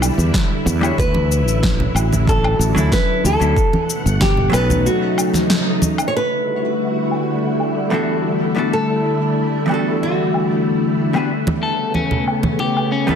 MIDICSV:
0, 0, Header, 1, 7, 480
1, 0, Start_track
1, 0, Tempo, 645161
1, 734, Time_signature, 4, 2, 24, 8
1, 9787, End_track
2, 0, Start_track
2, 0, Title_t, "Nylon-string guitar"
2, 0, Program_c, 0, 24
2, 740, Note_on_c, 0, 71, 104
2, 1428, Note_off_c, 0, 71, 0
2, 1703, Note_on_c, 0, 69, 98
2, 2149, Note_off_c, 0, 69, 0
2, 2181, Note_on_c, 0, 71, 114
2, 2423, Note_off_c, 0, 71, 0
2, 2426, Note_on_c, 0, 69, 101
2, 3111, Note_off_c, 0, 69, 0
2, 3138, Note_on_c, 0, 67, 87
2, 3374, Note_off_c, 0, 67, 0
2, 3377, Note_on_c, 0, 71, 105
2, 3618, Note_on_c, 0, 66, 78
2, 3623, Note_off_c, 0, 71, 0
2, 4307, Note_off_c, 0, 66, 0
2, 4522, Note_on_c, 0, 73, 81
2, 4573, Note_off_c, 0, 73, 0
2, 4587, Note_on_c, 0, 71, 94
2, 6497, Note_on_c, 0, 69, 80
2, 6558, Note_off_c, 0, 71, 0
2, 7426, Note_off_c, 0, 69, 0
2, 7462, Note_on_c, 0, 66, 67
2, 8149, Note_off_c, 0, 66, 0
2, 9787, End_track
3, 0, Start_track
3, 0, Title_t, "Clean electric guitar"
3, 0, Program_c, 1, 27
3, 8651, Note_on_c, 1, 69, 68
3, 8869, Note_off_c, 1, 69, 0
3, 8893, Note_on_c, 1, 61, 65
3, 9111, Note_off_c, 1, 61, 0
3, 9374, Note_on_c, 1, 67, 68
3, 9591, Note_off_c, 1, 67, 0
3, 9613, Note_on_c, 1, 61, 85
3, 9746, Note_off_c, 1, 61, 0
3, 9787, End_track
4, 0, Start_track
4, 0, Title_t, "Hollow-body jazz guitar"
4, 0, Program_c, 2, 26
4, 0, Note_on_c, 2, 55, 84
4, 0, Note_on_c, 2, 62, 73
4, 0, Note_on_c, 2, 64, 73
4, 0, Note_on_c, 2, 71, 89
4, 0, Note_on_c, 2, 78, 76
4, 574, Note_off_c, 2, 55, 0
4, 583, Note_off_c, 2, 62, 0
4, 590, Note_off_c, 2, 64, 0
4, 597, Note_off_c, 2, 78, 0
4, 604, Note_off_c, 2, 71, 0
4, 604, Note_on_c, 2, 55, 86
4, 612, Note_on_c, 2, 62, 75
4, 619, Note_on_c, 2, 64, 79
4, 624, Note_on_c, 2, 66, 79
4, 632, Note_on_c, 2, 73, 92
4, 714, Note_off_c, 2, 55, 0
4, 718, Note_off_c, 2, 62, 0
4, 721, Note_off_c, 2, 64, 0
4, 724, Note_off_c, 2, 66, 0
4, 728, Note_off_c, 2, 73, 0
4, 2043, Note_on_c, 2, 54, 85
4, 2053, Note_on_c, 2, 61, 82
4, 2059, Note_on_c, 2, 62, 80
4, 2067, Note_on_c, 2, 64, 82
4, 2074, Note_on_c, 2, 69, 101
4, 2501, Note_off_c, 2, 54, 0
4, 2506, Note_off_c, 2, 61, 0
4, 2509, Note_off_c, 2, 62, 0
4, 2513, Note_off_c, 2, 64, 0
4, 2516, Note_off_c, 2, 69, 0
4, 2526, Note_on_c, 2, 54, 82
4, 2532, Note_on_c, 2, 61, 78
4, 2540, Note_on_c, 2, 62, 73
4, 2548, Note_on_c, 2, 64, 69
4, 2555, Note_on_c, 2, 69, 90
4, 2635, Note_off_c, 2, 54, 0
4, 2638, Note_off_c, 2, 61, 0
4, 2642, Note_off_c, 2, 62, 0
4, 2646, Note_off_c, 2, 64, 0
4, 2649, Note_off_c, 2, 69, 0
4, 3345, Note_on_c, 2, 54, 85
4, 3360, Note_on_c, 2, 59, 75
4, 3372, Note_on_c, 2, 61, 75
4, 3389, Note_on_c, 2, 63, 78
4, 3404, Note_on_c, 2, 69, 93
4, 4413, Note_off_c, 2, 54, 0
4, 4421, Note_off_c, 2, 59, 0
4, 4427, Note_off_c, 2, 61, 0
4, 4435, Note_off_c, 2, 63, 0
4, 4443, Note_off_c, 2, 69, 0
4, 5879, Note_on_c, 2, 40, 80
4, 5886, Note_on_c, 2, 55, 74
4, 5892, Note_on_c, 2, 59, 71
4, 5900, Note_on_c, 2, 62, 71
4, 5903, Note_on_c, 2, 66, 68
4, 5909, Note_on_c, 2, 69, 87
4, 6339, Note_off_c, 2, 40, 0
4, 6342, Note_off_c, 2, 55, 0
4, 6345, Note_off_c, 2, 59, 0
4, 6349, Note_off_c, 2, 62, 0
4, 6351, Note_off_c, 2, 66, 0
4, 6354, Note_off_c, 2, 69, 0
4, 6358, Note_on_c, 2, 40, 71
4, 6365, Note_on_c, 2, 55, 60
4, 6370, Note_on_c, 2, 59, 61
4, 6375, Note_on_c, 2, 62, 63
4, 6384, Note_on_c, 2, 66, 66
4, 6389, Note_on_c, 2, 69, 77
4, 6475, Note_off_c, 2, 40, 0
4, 6479, Note_off_c, 2, 55, 0
4, 6481, Note_off_c, 2, 59, 0
4, 6484, Note_off_c, 2, 62, 0
4, 6488, Note_off_c, 2, 66, 0
4, 6491, Note_off_c, 2, 69, 0
4, 7185, Note_on_c, 2, 40, 73
4, 7199, Note_on_c, 2, 55, 69
4, 7209, Note_on_c, 2, 59, 67
4, 7223, Note_on_c, 2, 62, 70
4, 7231, Note_on_c, 2, 66, 68
4, 7245, Note_on_c, 2, 69, 84
4, 8253, Note_off_c, 2, 40, 0
4, 8260, Note_off_c, 2, 55, 0
4, 8265, Note_off_c, 2, 59, 0
4, 8272, Note_off_c, 2, 62, 0
4, 8276, Note_off_c, 2, 66, 0
4, 8282, Note_on_c, 2, 40, 76
4, 8283, Note_off_c, 2, 69, 0
4, 8288, Note_on_c, 2, 55, 71
4, 8294, Note_on_c, 2, 59, 71
4, 8301, Note_on_c, 2, 62, 70
4, 8304, Note_on_c, 2, 66, 68
4, 8310, Note_on_c, 2, 71, 81
4, 8393, Note_off_c, 2, 40, 0
4, 8396, Note_off_c, 2, 55, 0
4, 8399, Note_off_c, 2, 59, 0
4, 8402, Note_off_c, 2, 62, 0
4, 8404, Note_off_c, 2, 66, 0
4, 8407, Note_off_c, 2, 71, 0
4, 9723, Note_on_c, 2, 55, 79
4, 9728, Note_on_c, 2, 59, 73
4, 9738, Note_on_c, 2, 61, 78
4, 9743, Note_on_c, 2, 64, 69
4, 9749, Note_on_c, 2, 69, 91
4, 9787, Note_off_c, 2, 55, 0
4, 9787, Note_off_c, 2, 59, 0
4, 9787, Note_off_c, 2, 61, 0
4, 9787, Note_off_c, 2, 64, 0
4, 9787, Note_off_c, 2, 69, 0
4, 9787, End_track
5, 0, Start_track
5, 0, Title_t, "String machine"
5, 0, Program_c, 3, 50
5, 0, Note_on_c, 3, 50, 74
5, 0, Note_on_c, 3, 55, 72
5, 0, Note_on_c, 3, 64, 84
5, 714, Note_off_c, 3, 50, 0
5, 716, Note_off_c, 3, 55, 0
5, 727, Note_on_c, 3, 50, 73
5, 727, Note_on_c, 3, 54, 70
5, 2626, Note_off_c, 3, 64, 0
5, 2632, Note_off_c, 3, 50, 0
5, 2632, Note_off_c, 3, 54, 0
5, 2655, Note_on_c, 3, 78, 86
5, 2657, Note_on_c, 3, 47, 72
5, 2657, Note_on_c, 3, 57, 66
5, 3605, Note_off_c, 3, 78, 0
5, 3606, Note_off_c, 3, 47, 0
5, 3612, Note_on_c, 3, 49, 70
5, 3612, Note_on_c, 3, 63, 85
5, 4554, Note_off_c, 3, 57, 0
5, 4563, Note_on_c, 3, 57, 65
5, 4564, Note_off_c, 3, 49, 0
5, 4564, Note_off_c, 3, 63, 0
5, 4566, Note_on_c, 3, 50, 70
5, 4566, Note_on_c, 3, 55, 66
5, 4567, Note_on_c, 3, 64, 62
5, 4567, Note_on_c, 3, 66, 81
5, 6471, Note_off_c, 3, 66, 0
5, 8380, Note_off_c, 3, 50, 0
5, 8381, Note_off_c, 3, 55, 0
5, 8381, Note_off_c, 3, 64, 0
5, 8410, Note_on_c, 3, 49, 73
5, 8413, Note_on_c, 3, 59, 65
5, 9787, Note_off_c, 3, 49, 0
5, 9787, Note_off_c, 3, 57, 0
5, 9787, Note_off_c, 3, 59, 0
5, 9787, End_track
6, 0, Start_track
6, 0, Title_t, "Fretless electric bass"
6, 0, Program_c, 4, 35
6, 133, Note_on_c, 4, 40, 81
6, 221, Note_off_c, 4, 40, 0
6, 491, Note_on_c, 4, 40, 91
6, 671, Note_off_c, 4, 40, 0
6, 731, Note_on_c, 4, 38, 99
6, 1091, Note_off_c, 4, 38, 0
6, 1091, Note_on_c, 4, 33, 81
6, 1402, Note_off_c, 4, 33, 0
6, 1448, Note_on_c, 4, 33, 94
6, 1882, Note_off_c, 4, 33, 0
6, 1929, Note_on_c, 4, 33, 93
6, 2022, Note_off_c, 4, 33, 0
6, 2055, Note_on_c, 4, 38, 92
6, 2142, Note_off_c, 4, 38, 0
6, 2413, Note_on_c, 4, 38, 88
6, 2505, Note_off_c, 4, 38, 0
6, 2536, Note_on_c, 4, 38, 102
6, 2623, Note_off_c, 4, 38, 0
6, 3018, Note_on_c, 4, 31, 88
6, 3325, Note_off_c, 4, 31, 0
6, 3373, Note_on_c, 4, 35, 97
6, 3614, Note_off_c, 4, 35, 0
6, 9787, End_track
7, 0, Start_track
7, 0, Title_t, "Drums"
7, 15, Note_on_c, 9, 77, 57
7, 22, Note_on_c, 9, 69, 67
7, 89, Note_off_c, 9, 77, 0
7, 97, Note_off_c, 9, 69, 0
7, 138, Note_on_c, 9, 63, 65
7, 144, Note_on_c, 9, 69, 41
7, 212, Note_off_c, 9, 63, 0
7, 219, Note_off_c, 9, 69, 0
7, 252, Note_on_c, 9, 36, 103
7, 254, Note_on_c, 9, 38, 94
7, 262, Note_on_c, 9, 69, 31
7, 326, Note_off_c, 9, 36, 0
7, 329, Note_off_c, 9, 38, 0
7, 336, Note_off_c, 9, 69, 0
7, 495, Note_on_c, 9, 63, 86
7, 501, Note_on_c, 9, 69, 75
7, 570, Note_off_c, 9, 63, 0
7, 575, Note_off_c, 9, 69, 0
7, 618, Note_on_c, 9, 77, 74
7, 626, Note_on_c, 9, 69, 39
7, 693, Note_off_c, 9, 77, 0
7, 700, Note_off_c, 9, 69, 0
7, 731, Note_on_c, 9, 36, 100
7, 743, Note_on_c, 9, 69, 30
7, 806, Note_off_c, 9, 36, 0
7, 817, Note_off_c, 9, 69, 0
7, 852, Note_on_c, 9, 63, 83
7, 926, Note_off_c, 9, 63, 0
7, 981, Note_on_c, 9, 69, 67
7, 1055, Note_off_c, 9, 69, 0
7, 1103, Note_on_c, 9, 69, 40
7, 1177, Note_off_c, 9, 69, 0
7, 1212, Note_on_c, 9, 36, 97
7, 1213, Note_on_c, 9, 63, 56
7, 1215, Note_on_c, 9, 38, 94
7, 1222, Note_on_c, 9, 69, 29
7, 1286, Note_off_c, 9, 36, 0
7, 1288, Note_off_c, 9, 63, 0
7, 1290, Note_off_c, 9, 38, 0
7, 1297, Note_off_c, 9, 69, 0
7, 1338, Note_on_c, 9, 64, 71
7, 1413, Note_off_c, 9, 64, 0
7, 1455, Note_on_c, 9, 77, 74
7, 1463, Note_on_c, 9, 69, 66
7, 1530, Note_off_c, 9, 77, 0
7, 1537, Note_off_c, 9, 69, 0
7, 1581, Note_on_c, 9, 63, 90
7, 1587, Note_on_c, 9, 69, 41
7, 1656, Note_off_c, 9, 63, 0
7, 1661, Note_off_c, 9, 69, 0
7, 1692, Note_on_c, 9, 36, 99
7, 1703, Note_on_c, 9, 69, 31
7, 1767, Note_off_c, 9, 36, 0
7, 1778, Note_off_c, 9, 69, 0
7, 1818, Note_on_c, 9, 77, 76
7, 1893, Note_off_c, 9, 77, 0
7, 1942, Note_on_c, 9, 69, 73
7, 2017, Note_off_c, 9, 69, 0
7, 2054, Note_on_c, 9, 63, 58
7, 2065, Note_on_c, 9, 69, 39
7, 2128, Note_off_c, 9, 63, 0
7, 2140, Note_off_c, 9, 69, 0
7, 2172, Note_on_c, 9, 36, 103
7, 2175, Note_on_c, 9, 38, 99
7, 2183, Note_on_c, 9, 69, 31
7, 2246, Note_off_c, 9, 36, 0
7, 2250, Note_off_c, 9, 38, 0
7, 2257, Note_off_c, 9, 69, 0
7, 2419, Note_on_c, 9, 63, 72
7, 2421, Note_on_c, 9, 69, 65
7, 2494, Note_off_c, 9, 63, 0
7, 2495, Note_off_c, 9, 69, 0
7, 2541, Note_on_c, 9, 69, 37
7, 2615, Note_off_c, 9, 69, 0
7, 2652, Note_on_c, 9, 36, 98
7, 2660, Note_on_c, 9, 69, 29
7, 2727, Note_off_c, 9, 36, 0
7, 2735, Note_off_c, 9, 69, 0
7, 2778, Note_on_c, 9, 63, 84
7, 2852, Note_off_c, 9, 63, 0
7, 2900, Note_on_c, 9, 69, 67
7, 2975, Note_off_c, 9, 69, 0
7, 3025, Note_on_c, 9, 69, 43
7, 3099, Note_off_c, 9, 69, 0
7, 3131, Note_on_c, 9, 38, 99
7, 3132, Note_on_c, 9, 36, 94
7, 3132, Note_on_c, 9, 63, 54
7, 3138, Note_on_c, 9, 69, 29
7, 3205, Note_off_c, 9, 38, 0
7, 3206, Note_off_c, 9, 36, 0
7, 3206, Note_off_c, 9, 63, 0
7, 3212, Note_off_c, 9, 69, 0
7, 3253, Note_on_c, 9, 64, 68
7, 3328, Note_off_c, 9, 64, 0
7, 3371, Note_on_c, 9, 77, 76
7, 3378, Note_on_c, 9, 69, 71
7, 3446, Note_off_c, 9, 77, 0
7, 3453, Note_off_c, 9, 69, 0
7, 3497, Note_on_c, 9, 63, 83
7, 3498, Note_on_c, 9, 64, 76
7, 3502, Note_on_c, 9, 69, 38
7, 3571, Note_off_c, 9, 63, 0
7, 3572, Note_off_c, 9, 64, 0
7, 3576, Note_off_c, 9, 69, 0
7, 3620, Note_on_c, 9, 69, 32
7, 3694, Note_off_c, 9, 69, 0
7, 3853, Note_on_c, 9, 77, 58
7, 3860, Note_on_c, 9, 69, 74
7, 3927, Note_off_c, 9, 77, 0
7, 3935, Note_off_c, 9, 69, 0
7, 3970, Note_on_c, 9, 63, 60
7, 3975, Note_on_c, 9, 38, 30
7, 3982, Note_on_c, 9, 69, 41
7, 4044, Note_off_c, 9, 63, 0
7, 4049, Note_off_c, 9, 38, 0
7, 4056, Note_off_c, 9, 69, 0
7, 4091, Note_on_c, 9, 38, 100
7, 4098, Note_on_c, 9, 69, 31
7, 4165, Note_off_c, 9, 38, 0
7, 4172, Note_off_c, 9, 69, 0
7, 4329, Note_on_c, 9, 63, 95
7, 4336, Note_on_c, 9, 69, 73
7, 4403, Note_off_c, 9, 63, 0
7, 4411, Note_off_c, 9, 69, 0
7, 4452, Note_on_c, 9, 77, 76
7, 4459, Note_on_c, 9, 69, 37
7, 4526, Note_off_c, 9, 77, 0
7, 4533, Note_off_c, 9, 69, 0
7, 4578, Note_on_c, 9, 69, 28
7, 4652, Note_off_c, 9, 69, 0
7, 4817, Note_on_c, 9, 69, 62
7, 4892, Note_off_c, 9, 69, 0
7, 5292, Note_on_c, 9, 77, 68
7, 5299, Note_on_c, 9, 69, 59
7, 5366, Note_off_c, 9, 77, 0
7, 5374, Note_off_c, 9, 69, 0
7, 5653, Note_on_c, 9, 77, 66
7, 5727, Note_off_c, 9, 77, 0
7, 5778, Note_on_c, 9, 69, 62
7, 5853, Note_off_c, 9, 69, 0
7, 6737, Note_on_c, 9, 69, 66
7, 6812, Note_off_c, 9, 69, 0
7, 7212, Note_on_c, 9, 77, 65
7, 7219, Note_on_c, 9, 69, 63
7, 7286, Note_off_c, 9, 77, 0
7, 7293, Note_off_c, 9, 69, 0
7, 7694, Note_on_c, 9, 77, 53
7, 7702, Note_on_c, 9, 69, 68
7, 7769, Note_off_c, 9, 77, 0
7, 7776, Note_off_c, 9, 69, 0
7, 8178, Note_on_c, 9, 69, 68
7, 8252, Note_off_c, 9, 69, 0
7, 8295, Note_on_c, 9, 77, 66
7, 8302, Note_on_c, 9, 69, 37
7, 8369, Note_off_c, 9, 77, 0
7, 8376, Note_off_c, 9, 69, 0
7, 8534, Note_on_c, 9, 63, 88
7, 8537, Note_on_c, 9, 60, 67
7, 8608, Note_off_c, 9, 63, 0
7, 8612, Note_off_c, 9, 60, 0
7, 8885, Note_on_c, 9, 60, 43
7, 8887, Note_on_c, 9, 63, 59
7, 8960, Note_off_c, 9, 60, 0
7, 8962, Note_off_c, 9, 63, 0
7, 9010, Note_on_c, 9, 64, 68
7, 9084, Note_off_c, 9, 64, 0
7, 9133, Note_on_c, 9, 77, 62
7, 9140, Note_on_c, 9, 69, 67
7, 9208, Note_off_c, 9, 77, 0
7, 9215, Note_off_c, 9, 69, 0
7, 9249, Note_on_c, 9, 64, 76
7, 9253, Note_on_c, 9, 63, 81
7, 9264, Note_on_c, 9, 69, 40
7, 9324, Note_off_c, 9, 64, 0
7, 9327, Note_off_c, 9, 63, 0
7, 9339, Note_off_c, 9, 69, 0
7, 9368, Note_on_c, 9, 60, 69
7, 9442, Note_off_c, 9, 60, 0
7, 9499, Note_on_c, 9, 77, 68
7, 9573, Note_off_c, 9, 77, 0
7, 9619, Note_on_c, 9, 69, 70
7, 9694, Note_off_c, 9, 69, 0
7, 9732, Note_on_c, 9, 60, 42
7, 9738, Note_on_c, 9, 63, 58
7, 9787, Note_off_c, 9, 60, 0
7, 9787, Note_off_c, 9, 63, 0
7, 9787, End_track
0, 0, End_of_file